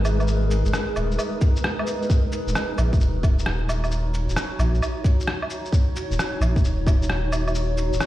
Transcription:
Already playing: G#1 G#3 D#4 G#4 A#4 B4
0.05 cabasa, low woodblock, shaker
0.20 low woodblock, shaker
0.27 shaker
0.51 cabasa
0.65 G#1, shaker
0.74 cross-stick, shaker
0.96 D#1, cabasa, low woodblock
1.12 shaker
1.19 low woodblock, shaker
1.41 kick, cabasa
1.56 shaker
1.64 cross-stick
1.79 low woodblock
1.87 cabasa, shaker
2.02 shaker
2.10 D#4, kick, shaker
2.32 cabasa
2.41 F#4
2.47 D#1, shaker
2.55 cross-stick, shaker
2.78 A#1, cabasa, low woodblock
2.93 kick, shaker
3.00 D#1 C#5, shaker
3.23 kick, cabasa, low woodblock
3.39 shaker
3.46 D#1, cross-stick
3.69 cabasa, low woodblock, shaker
3.84 low woodblock, shaker
3.91 shaker
4.14 cabasa
4.29 D#1, shaker
4.36 cross-stick, shaker
4.59 A#1, cabasa, low woodblock
4.75 shaker
4.82 low woodblock, shaker
5.04 kick, cabasa
5.20 shaker
5.27 cross-stick
5.42 low woodblock
5.50 cabasa, shaker
5.65 shaker
5.72 kick, shaker
5.96 cabasa
6.11 D#1, shaker
6.19 cross-stick, shaker
6.41 A#1, cabasa, low woodblock
6.56 kick, shaker
6.63 D#1, shaker
6.86 kick, cabasa, low woodblock
7.02 shaker
7.09 D#1, cross-stick
7.32 cabasa, low woodblock, shaker
7.47 low woodblock, shaker
7.55 shaker
7.78 cabasa
7.92 D#1, shaker
8.00 cross-stick, shaker

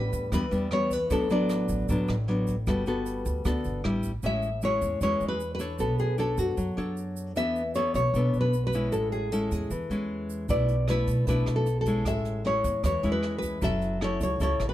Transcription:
Already playing: A2 G3 B3 D4 B4
0.13 E2, kick, closed hi-hat, shaker
0.32 E2 E3 G3 B3 D4 B4, kick, cross-stick, closed hi-hat, shaker
0.51 E2 G3 B3 D4, closed hi-hat, shaker
0.71 G3 B3 D4 C#5, cross-stick, closed hi-hat
0.91 B4, kick, closed hi-hat, shaker
1.10 A1 A2 F#3 B3 D4 A4, kick, closed hi-hat, shaker
1.30 F#3 B3 D4 D5, closed hi-hat, shaker
1.49 cross-stick, closed hi-hat, shaker
1.68 A1, kick, closed hi-hat, shaker
1.89 A1 A2 F#3 B3 D4, kick, closed hi-hat, shaker
2.08 A1, cross-stick, closed hi-hat, shaker
2.28 F#3 B3 D4, closed hi-hat
2.47 kick, closed hi-hat, shaker
2.67 G1 G3 B3 F#4 A4, kick, cross-stick, closed hi-hat, shaker
2.86 B3 F#4 A4, closed hi-hat, shaker
3.06 closed hi-hat, shaker
3.26 D2, kick, closed hi-hat, shaker
3.45 D2 D3 B3 F#4 A4, kick, cross-stick, closed hi-hat, shaker
3.64 G1, closed hi-hat, shaker
3.84 A1 G3 D4 E4, cross-stick, closed hi-hat
4.03 kick, closed hi-hat, shaker
4.23 A1 A2 G#3 C#4 E4 E5, shaker
4.42 shaker
4.62 G#3 C#4 E4 C#5, shaker
4.82 E2, shaker
5.01 E2 E3 G#3 C#4 E4 C#5, shaker
5.20 E2, shaker
5.28 B4
5.40 shaker
5.55 B4
5.59 D4 A4 C#5, shaker
5.79 B1 B3 A4, shaker
5.99 G#4, shaker
6.18 D4 A4 C#5, shaker
6.37 F#2 F#4, shaker
6.57 F#2 F#3, shaker
6.77 F#2 D4 A4 C#5, shaker
6.97 shaker
7.16 shaker
7.36 E2 E3 B3 D4 A4 E5, shaker
7.56 shaker
7.75 B3 D4 A4 C#5, shaker
7.94 B1 C#5, shaker
8.14 B1 B2 B3 D4 A4, shaker
8.33 B1, shaker
8.41 B4
8.53 shaker
8.67 B4
8.73 G#3 C#4 E4, shaker
8.92 A1 A2 A4, shaker
9.12 G#4, shaker
9.32 G#3 C#4 E4 A4, shaker
9.51 E2 G#4, shaker
9.71 E2 E3, shaker
9.90 E2 G#3 C#4 E4, shaker
10.30 shaker
10.49 B1 B2 A3 D4 E4 D5, kick, closed hi-hat, shaker
10.68 closed hi-hat, shaker
10.88 A3 D4 E4 B4, cross-stick, closed hi-hat, shaker
11.07 B1, kick, closed hi-hat, shaker
11.27 B1 B2 A3 D4 E4 B4, kick, closed hi-hat, shaker
11.46 B1, cross-stick, closed hi-hat, shaker
11.56 A4
11.66 closed hi-hat, shaker
11.81 A4
11.85 G#3 C#4 E4, kick, closed hi-hat, shaker
12.05 A1 A2 E5, kick, cross-stick, closed hi-hat, shaker
12.25 closed hi-hat, shaker
12.44 G#3 C#4 E4 C#5, closed hi-hat
12.64 E2, kick, closed hi-hat, shaker
12.83 E2 E3 C#5, kick, cross-stick, closed hi-hat, shaker
13.03 E2 G#3 C#4 E4, closed hi-hat, shaker
13.12 B4
13.23 cross-stick, closed hi-hat
13.38 B4, shaker
13.42 kick, closed hi-hat
13.62 F#1 F#3 C#4 E4 A4 E5, kick, closed hi-hat, shaker
13.82 closed hi-hat, shaker
14.01 C#4 E4 A4 C#5, cross-stick, closed hi-hat
14.21 C#2 C#5, kick, closed hi-hat, shaker
14.40 C#2 C#3 C#4 E4 A4 C#5, kick, closed hi-hat, shaker
14.60 A1, cross-stick, closed hi-hat, shaker
14.69 B4

